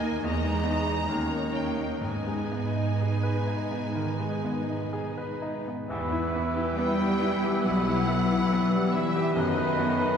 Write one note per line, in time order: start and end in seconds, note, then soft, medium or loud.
0.00 0.20 D#2 medium
0.00 0.21 D#2 medium
0.00 0.03 A#3 soft
0.00 0.21 A#3 medium
0.00 0.24 A#3 soft
0.00 0.21 D#4 medium
0.00 0.27 D#4 soft
0.00 2.00 D#4 medium
0.00 0.27 A#4 soft
0.00 0.21 D#5 medium
0.00 0.27 D#5 soft
0.00 0.24 G#5 medium
0.23 1.06 E2 medium
0.23 1.09 E2 soft
0.23 1.10 G#3 soft
0.23 1.09 G#3 soft
0.23 1.08 D#4 soft
0.23 1.08 D#5 soft
0.23 1.53 A#5 medium
0.44 0.78 G#3 soft
0.64 0.99 B3 soft
0.86 1.09 D#4 soft
1.09 2.00 D#2 soft
1.09 2.03 D#2 soft
1.09 2.04 A#3 soft
1.09 2.04 C#4 soft
1.09 2.01 D#4 soft
1.09 2.02 D#4 soft
1.09 2.03 C#5 soft
1.30 1.68 A#3 soft
1.53 1.93 C#4 soft
1.53 2.04 G5 medium
1.77 2.02 D#4 soft
2.01 3.91 G#2 soft
2.01 5.64 G#2 soft
2.01 5.68 G#3 soft
2.01 5.51 B3 soft
2.01 5.64 D#4 soft
2.01 5.51 D#4 soft
2.01 5.64 D#4 soft
2.01 5.65 B4 soft
2.01 5.42 G#5 soft
2.27 2.67 G#3 soft
2.52 2.91 B3 soft
2.76 3.15 D#4 soft
3.01 3.39 G#4 soft
3.23 3.62 B4 soft
3.47 3.86 D#4 soft
3.71 4.10 B3 soft
3.95 4.34 D#3 soft
4.19 4.59 G#3 soft
4.45 4.84 B3 soft
4.70 5.08 D#4 soft
4.93 5.32 G#4 soft
5.17 5.57 B4 soft
5.42 5.80 D#4 soft
5.68 5.90 B3 soft
5.88 6.63 E2 medium
5.88 7.62 E2 soft
5.88 6.74 E3 soft
5.88 6.10 G3 soft
5.88 9.32 B3 soft
5.88 6.74 B3 soft
5.88 9.32 E4 soft
5.88 9.32 B4 soft
5.88 6.74 B4 medium
5.88 6.74 E6 soft
6.10 6.33 B3 soft
6.10 6.47 E4 soft
6.32 6.55 E4 soft
6.36 6.70 B3 soft
6.55 6.92 E4 soft
6.55 6.78 G4 soft
6.77 9.32 E3 medium
6.77 7.61 G3 medium
6.77 7.62 G3 medium
6.77 9.31 B3 soft
6.77 7.14 B3 soft
6.77 7.00 E4 soft
6.77 9.32 B4 soft
6.77 7.62 G5 medium
6.77 9.32 E6 soft
6.99 7.35 G3 soft
6.99 7.22 B3 soft
7.22 7.44 G3 soft
7.22 7.57 E4 soft
7.44 7.66 B3 soft
7.44 7.79 G4 soft
7.64 8.38 B1 medium
7.64 8.01 B2 soft
7.64 8.94 F#3 medium
7.64 7.86 E4 soft
7.64 8.94 F#5 medium
7.87 8.23 E4 soft
7.87 8.09 G4 soft
8.09 8.43 B3 soft
8.09 8.31 E4 soft
8.30 8.52 B3 soft
8.30 8.66 E4 soft
8.51 8.73 G3 soft
8.51 8.86 B3 soft
8.72 9.07 G3 soft
8.72 8.93 B3 soft
8.93 9.36 E3 medium
8.93 9.15 E4 soft
8.93 9.28 E4 soft
8.93 9.35 E5 medium
9.14 9.35 G4 soft
9.14 9.37 G4 soft
9.34 10.06 F#2 medium
9.34 10.17 F#2 medium
9.34 10.17 D#3 medium
9.34 10.17 A3 soft
9.34 9.54 B3 medium
9.34 10.17 B3 soft
9.34 10.17 D#4 soft
9.34 10.17 B4 medium
9.34 10.17 D#5 medium
9.34 10.17 F#6 soft
9.54 9.77 D#4 soft
9.54 9.91 B4 soft
9.77 10.13 B3 soft
9.77 9.99 F#4 soft
9.98 10.17 A4 soft
9.98 10.17 B4 soft